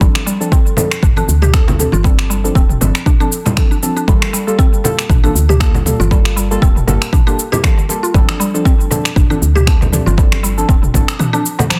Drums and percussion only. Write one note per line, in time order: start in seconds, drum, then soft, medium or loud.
0.01 kick loud
0.01 high conga medium
0.01 cabasa medium
0.15 finger snap medium
0.15 muted conga soft
0.15 cabasa soft
0.27 cabasa medium
0.41 cabasa soft
0.52 kick loud
0.52 muted conga soft
0.52 cabasa medium
0.67 cabasa soft
0.77 low conga loud
0.77 cabasa medium
0.91 finger snap medium
0.91 cabasa soft
1.03 kick loud
1.03 mid tom medium
1.03 muted conga soft
1.03 cabasa medium
1.16 high conga medium
1.16 cabasa soft
1.29 cabasa medium
1.42 mid tom medium
1.42 muted conga soft
1.42 cabasa soft
1.54 finger snap medium
1.54 kick loud
1.54 cabasa medium
1.68 low conga loud
1.68 cabasa soft
1.79 mid tom medium
1.79 muted conga soft
1.79 cabasa medium
1.92 high conga loud
1.92 cabasa soft
2.03 kick loud
2.03 high conga medium
2.03 cabasa soft
2.18 finger snap medium
2.18 muted conga soft
2.18 cabasa soft
2.31 cabasa medium
2.45 cabasa soft
2.55 kick loud
2.55 muted conga soft
2.55 cabasa medium
2.70 mid tom medium
2.70 cabasa soft
2.81 low conga medium
2.81 cabasa medium
2.95 finger snap medium
2.95 cabasa soft
3.06 kick loud
3.06 mid tom medium
3.06 muted conga soft
3.06 high conga medium
3.06 cabasa medium
3.21 cabasa soft
3.32 cabasa loud
3.45 muted conga soft
3.45 low conga loud
3.45 cabasa soft
3.57 finger snap medium
3.57 kick loud
3.57 high conga medium
3.57 cabasa medium
3.72 cabasa soft
3.83 muted conga soft
3.83 cabasa medium
3.97 cabasa soft
4.08 kick loud
4.08 high conga medium
4.08 cabasa soft
4.22 finger snap medium
4.22 muted conga soft
4.22 cabasa soft
4.34 cabasa medium
4.48 cabasa soft
4.59 kick loud
4.59 muted conga soft
4.59 cabasa medium
4.74 cabasa soft
4.85 low conga medium
4.85 cabasa medium
4.99 finger snap medium
4.99 cabasa soft
5.10 kick loud
5.10 mid tom medium
5.10 muted conga medium
5.10 cabasa medium
5.24 high conga medium
5.24 cabasa soft
5.36 cabasa medium
5.49 mid tom medium
5.49 muted conga soft
5.49 cabasa soft
5.60 finger snap medium
5.60 kick loud
5.60 cabasa medium
5.75 low conga medium
5.75 cabasa soft
5.86 mid tom medium
5.86 muted conga soft
5.86 cabasa medium
6.00 high conga medium
6.00 cabasa soft
6.11 kick loud
6.11 high conga medium
6.11 cabasa soft
6.25 finger snap medium
6.25 muted conga soft
6.25 cabasa soft
6.37 cabasa medium
6.51 cabasa soft
6.62 kick loud
6.62 muted conga soft
6.62 cabasa soft
6.76 mid tom medium
6.76 cabasa soft
6.88 low conga loud
6.88 cabasa medium
7.02 finger snap medium
7.02 cabasa soft
7.13 kick loud
7.13 mid tom medium
7.13 muted conga soft
7.13 high conga medium
7.13 cabasa soft
7.28 cabasa soft
7.39 cabasa medium
7.53 muted conga soft
7.53 low conga medium
7.53 cabasa soft
7.64 finger snap medium
7.64 kick loud
7.64 high conga medium
7.64 cabasa soft
7.79 cabasa soft
7.89 muted conga soft
7.89 cabasa medium
8.04 cabasa soft
8.14 kick loud
8.14 high conga medium
8.14 cabasa soft
8.29 finger snap medium
8.29 muted conga medium
8.29 cabasa soft
8.41 cabasa medium
8.55 cabasa soft
8.65 kick loud
8.65 muted conga soft
8.65 cabasa medium
8.81 cabasa soft
8.91 low conga medium
8.91 cabasa medium
9.05 finger snap medium
9.05 cabasa soft
9.16 kick loud
9.16 mid tom medium
9.16 muted conga soft
9.16 cabasa soft
9.30 high conga medium
9.30 cabasa soft
9.42 cabasa medium
9.56 mid tom medium
9.56 muted conga soft
9.56 cabasa soft
9.67 finger snap medium
9.67 kick loud
9.67 cabasa soft
9.82 low conga medium
9.82 cabasa soft
9.93 mid tom medium
9.93 muted conga medium
9.93 cabasa medium
10.07 high conga medium
10.07 cabasa soft
10.18 kick loud
10.18 high conga medium
10.18 low conga medium
10.18 cabasa soft
10.32 finger snap medium
10.32 muted conga medium
10.32 cabasa soft
10.44 cabasa medium
10.58 cabasa soft
10.69 kick loud
10.69 muted conga soft
10.69 cabasa medium
10.83 mid tom medium
10.83 cabasa soft
10.94 kick medium
10.94 low conga loud
10.94 cabasa medium
11.08 finger snap medium
11.08 cabasa soft
11.19 mid tom medium
11.19 muted conga medium
11.19 high conga medium
11.19 cabasa soft
11.34 cabasa soft
11.46 cabasa medium
11.59 muted conga soft
11.59 low conga loud
11.59 cabasa soft
11.70 finger snap medium
11.70 high conga medium
11.70 cabasa soft